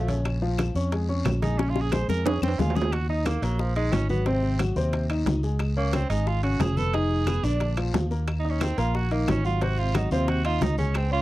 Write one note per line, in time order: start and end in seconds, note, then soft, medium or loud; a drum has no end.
0.00 0.69 A#1 medium
0.00 0.21 A3 medium
0.08 0.36 C#3 medium
0.08 0.36 C#4 medium
0.08 0.36 C#5 medium
0.08 high bongo soft
0.08 high conga medium
0.08 high timbale medium
0.08 short guiro medium
0.25 high bongo medium
0.25 high conga soft
0.25 high timbale medium
0.25 long guiro medium
0.25 claves medium
0.42 0.69 F3 medium
0.42 0.69 F4 medium
0.42 0.70 F5 medium
0.42 high conga soft
0.58 high bongo soft
0.58 high conga medium
0.58 high timbale loud
0.58 low timbale medium
0.58 short guiro medium
0.58 claves medium
0.75 1.22 F2 medium
0.75 0.89 C#4 medium
0.75 0.89 C#5 medium
0.75 0.89 C#6 medium
0.75 high bongo soft
0.75 high conga soft
0.75 short guiro medium
0.92 1.06 G#3 medium
0.92 1.06 G#4 medium
0.92 1.06 G#5 medium
0.92 high bongo medium
0.92 high conga soft
0.92 high timbale medium
0.92 long guiro medium
1.09 1.36 C#4 medium
1.09 1.36 C#5 medium
1.09 1.37 C#6 medium
1.09 high bongo soft
1.09 high conga soft
1.25 2.03 A#1 loud
1.25 high bongo soft
1.25 low bongo medium
1.25 high conga medium
1.25 high timbale medium
1.25 low timbale medium
1.25 short guiro medium
1.25 claves medium
1.42 1.56 G#3 medium
1.42 1.60 D#4 medium
1.42 1.56 G#4 medium
1.42 1.56 G#5 medium
1.42 high bongo soft
1.42 high conga medium
1.42 high timbale medium
1.42 short guiro medium
1.58 1.86 C#3 medium
1.58 1.71 C#4 medium
1.58 1.86 C#4 medium
1.58 1.87 C#5 medium
1.58 high bongo loud
1.58 high timbale medium
1.58 long guiro medium
1.70 1.83 F4 medium
1.76 high bongo medium
1.76 high conga soft
1.81 1.94 G#4 medium
1.92 2.20 G#3 medium
1.92 2.20 G#4 medium
1.92 2.08 C5 loud
1.92 2.20 G#5 medium
1.92 high bongo medium
1.92 high conga medium
1.92 high timbale loud
1.92 low timbale medium
1.92 short guiro medium
1.92 claves medium
2.09 2.40 F2 loud
2.09 2.27 A#4 medium
2.09 low bongo medium
2.09 high conga soft
2.09 short guiro medium
2.26 2.53 C#4 medium
2.26 2.42 G#4 loud
2.26 2.53 C#5 medium
2.26 2.54 C#6 medium
2.26 low bongo medium
2.26 high conga soft
2.26 high timbale loud
2.26 long guiro medium
2.42 2.58 F2 medium
2.42 2.61 C4 medium
2.42 low bongo medium
2.42 high conga soft
2.42 claves medium
2.48 high timbale medium
2.59 3.37 D#2 loud
2.59 2.73 G#3 medium
2.59 2.77 F4 medium
2.59 2.73 G#4 medium
2.59 2.73 G#5 medium
2.59 low bongo medium
2.59 high conga medium
2.59 low timbale medium
2.59 short guiro medium
2.70 low timbale medium
2.76 2.90 C#3 medium
2.76 2.90 C#4 medium
2.76 2.94 G#4 medium
2.76 2.90 C#5 medium
2.76 low bongo medium
2.76 short guiro medium
2.82 low timbale medium
2.92 3.09 F#4 medium
2.92 high bongo medium
2.92 high conga soft
2.92 high timbale medium
2.92 long guiro medium
2.92 claves medium
3.09 3.27 D#4 medium
3.09 3.37 D#4 medium
3.09 3.37 D#5 medium
3.09 3.37 D#6 medium
3.09 high conga soft
3.26 3.44 A#3 medium
3.26 high bongo soft
3.26 high conga medium
3.26 high timbale loud
3.26 low timbale medium
3.26 short guiro medium
3.26 claves medium
3.42 3.89 A#1 medium
3.42 3.61 F#3 medium
3.42 3.70 A#3 medium
3.42 3.70 A#4 medium
3.42 3.71 A#5 medium
3.42 high timbale medium
3.42 short guiro medium
3.59 3.75 F3 medium
3.59 high bongo medium
3.59 high conga soft
3.59 long guiro medium
3.76 4.04 D#3 medium
3.76 3.94 G#3 medium
3.76 4.04 D#4 medium
3.76 4.04 D#5 medium
3.76 high conga soft
3.76 high timbale medium
3.92 4.71 G#1 medium
3.92 4.09 C#4 medium
3.92 high bongo medium
3.92 low bongo medium
3.92 high conga medium
3.92 high timbale medium
3.92 low timbale medium
3.92 short guiro medium
3.92 claves medium
4.09 4.23 F#3 medium
4.09 4.28 B3 medium
4.09 4.23 F#4 medium
4.09 4.24 F#5 medium
4.09 high conga medium
4.09 short guiro medium
4.26 4.54 C3 medium
4.26 4.60 C4 medium
4.26 4.54 C4 medium
4.26 4.54 C5 medium
4.26 high bongo medium
4.26 high timbale medium
4.26 long guiro medium
4.43 high bongo soft
4.43 high conga soft
4.59 4.73 F#3 medium
4.59 4.74 F#4 medium
4.59 4.74 F#5 medium
4.59 high bongo soft
4.59 high conga medium
4.59 high timbale loud
4.59 low timbale medium
4.59 short guiro medium
4.59 claves medium
4.76 5.23 D#2 loud
4.76 5.04 C3 medium
4.76 5.04 C4 medium
4.76 5.04 C5 medium
4.76 high bongo soft
4.76 high conga soft
4.76 short guiro medium
4.93 high bongo medium
4.93 high conga soft
4.93 high timbale medium
4.93 long guiro medium
5.10 5.37 D#3 medium
5.10 5.38 D#4 medium
5.10 5.38 D#5 medium
5.10 high conga soft
5.10 high timbale medium
5.10 claves medium
5.26 6.04 C#2 medium
5.26 high bongo medium
5.26 low bongo medium
5.26 high conga medium
5.26 high timbale medium
5.26 low timbale medium
5.26 short guiro medium
5.43 5.71 G#3 medium
5.43 5.71 G#4 medium
5.43 5.71 G#5 medium
5.43 high bongo soft
5.43 short guiro medium
5.59 high bongo medium
5.59 high conga soft
5.59 high timbale medium
5.59 long guiro medium
5.59 claves medium
5.77 5.95 A#3 medium
5.77 6.04 C#4 medium
5.77 6.04 C#5 medium
5.77 6.05 C#6 medium
5.77 high conga soft
5.93 6.09 C4 medium
5.93 high bongo medium
5.93 high conga loud
5.93 high timbale loud
5.93 low timbale medium
5.93 short guiro medium
5.93 claves medium
6.10 6.57 G#1 loud
6.10 6.38 G#3 medium
6.10 6.29 D#4 medium
6.10 6.38 G#4 medium
6.10 6.38 G#5 medium
6.10 high timbale medium
6.10 short guiro medium
6.27 6.43 F4 medium
6.27 high bongo medium
6.27 high conga soft
6.27 long guiro medium
6.43 6.71 C#3 medium
6.43 6.71 C#4 medium
6.43 6.62 F#4 medium
6.43 6.71 C#5 medium
6.43 high conga soft
6.43 high timbale medium
6.59 7.38 F1 medium
6.59 6.78 G#4 medium
6.59 high bongo medium
6.59 low bongo medium
6.59 high conga medium
6.59 high timbale medium
6.59 low timbale medium
6.59 short guiro medium
6.59 claves medium
6.77 6.91 B3 medium
6.77 6.96 A4 loud
6.77 6.91 B4 medium
6.77 6.91 B5 medium
6.77 high conga medium
6.77 short guiro medium
6.94 7.21 D#3 medium
6.94 7.21 D#4 medium
6.94 7.46 G#4 medium
6.94 7.21 D#5 medium
6.94 high bongo medium
6.94 high conga soft
6.94 high timbale medium
6.94 long guiro medium
7.11 high bongo soft
7.11 high conga soft
7.27 7.41 B3 medium
7.27 7.41 B4 medium
7.27 7.41 B5 medium
7.27 high bongo medium
7.27 high conga medium
7.27 high timbale medium
7.27 low timbale medium
7.27 short guiro medium
7.27 claves medium
7.43 7.90 A#1 medium
7.43 7.72 D3 medium
7.43 7.78 D4 medium
7.43 7.72 D4 medium
7.43 7.72 D5 medium
7.43 high bongo soft
7.43 high conga soft
7.43 short guiro medium
7.60 high bongo medium
7.60 high conga soft
7.60 high timbale medium
7.60 long guiro medium
7.77 8.05 F3 medium
7.77 8.05 F4 medium
7.77 8.05 F5 medium
7.77 high conga soft
7.77 high timbale medium
7.77 claves medium
7.94 8.72 D#2 medium
7.94 high bongo medium
7.94 low bongo medium
7.94 high conga medium
7.94 high timbale medium
7.94 low timbale medium
7.94 short guiro medium
8.11 8.38 A#3 medium
8.11 8.38 A#4 medium
8.11 8.39 A#5 medium
8.11 high bongo soft
8.11 short guiro medium
8.28 high bongo medium
8.28 high conga soft
8.28 high timbale medium
8.28 long guiro medium
8.28 claves medium
8.39 8.52 D#4 medium
8.45 8.72 D#4 medium
8.45 8.72 D#5 medium
8.45 8.72 D#6 medium
8.45 high conga soft
8.51 8.64 C#4 medium
8.61 8.78 C4 medium
8.61 high bongo medium
8.61 high conga medium
8.61 high timbale loud
8.61 low timbale medium
8.61 short guiro medium
8.61 claves medium
8.78 9.24 A#1 loud
8.78 9.05 A#3 medium
8.78 8.97 F4 medium
8.78 9.05 A#4 medium
8.78 9.05 A#5 medium
8.78 high timbale medium
8.78 short guiro medium
8.94 9.11 F#4 loud
8.94 high bongo medium
8.94 high conga soft
8.94 long guiro medium
9.11 9.38 D#3 medium
9.11 9.31 A#3 medium
9.11 9.39 D#4 medium
9.11 9.39 D#5 medium
9.11 high conga soft
9.11 high timbale medium
9.28 10.06 G#1 medium
9.28 9.45 C#4 medium
9.28 high bongo medium
9.28 low bongo medium
9.28 high conga medium
9.28 high timbale medium
9.28 low timbale medium
9.28 short guiro medium
9.28 claves medium
9.44 9.58 F#3 medium
9.44 9.64 F4 medium
9.44 9.58 F#4 medium
9.44 9.58 F#5 medium
9.44 short guiro medium
9.61 9.89 C3 medium
9.61 9.89 C4 medium
9.61 9.80 F#4 medium
9.61 9.89 C5 medium
9.61 high bongo medium
9.61 high conga soft
9.61 high timbale medium
9.61 long guiro medium
9.78 9.97 F4 medium
9.78 high bongo soft
9.78 high conga soft
9.94 10.08 F#3 medium
9.94 10.11 D#4 medium
9.94 10.08 F#4 medium
9.94 10.09 F#5 medium
9.94 high bongo medium
9.94 high conga medium
9.94 high timbale loud
9.94 low timbale medium
9.94 short guiro medium
9.94 claves medium
10.11 10.58 D#2 medium
10.11 10.39 C3 medium
10.11 10.39 C4 medium
10.11 10.30 F4 medium
10.11 10.39 C5 medium
10.11 high bongo soft
10.11 high conga soft
10.11 short guiro medium
10.28 10.44 F#4 loud
10.28 high bongo medium
10.28 high conga soft
10.28 high timbale medium
10.28 long guiro medium
10.44 10.72 D#3 medium
10.44 10.72 D#4 medium
10.44 10.64 F4 medium
10.44 10.73 D#5 medium
10.44 high conga soft
10.44 high timbale medium
10.44 claves medium
10.61 11.22 C#2 loud
10.61 10.78 D#4 medium
10.61 high bongo medium
10.61 low bongo medium
10.61 high conga medium
10.61 high timbale medium
10.61 low timbale medium
10.61 short guiro medium
10.78 11.06 G#3 medium
10.78 10.98 C#4 medium
10.78 11.06 G#4 medium
10.78 11.06 G#5 medium
10.78 high bongo soft
10.78 high conga medium
10.78 short guiro medium
10.94 11.12 C4 medium
10.94 high bongo medium
10.94 high conga soft
10.94 high timbale medium
10.94 long guiro medium
10.94 claves medium
11.11 11.22 C#4 medium
11.11 11.22 F4 loud
11.11 11.22 C#5 medium
11.11 11.22 C#6 medium
11.11 high conga soft